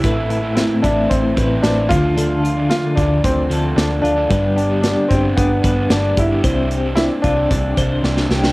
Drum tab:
HH |x-x-x-x-x-x-x-x-|x-x-x-x-x-x-x-x-|x-x-x-x-x-x-x-x-|x-x-x-x-x-x-----|
SD |----o-------o---|----o-------o---|----o-------o---|----o-------oooo|
BD |o-----o-o-o---o-|------o-o-------|o-----o-o-o---o-|o-----o-o-o-----|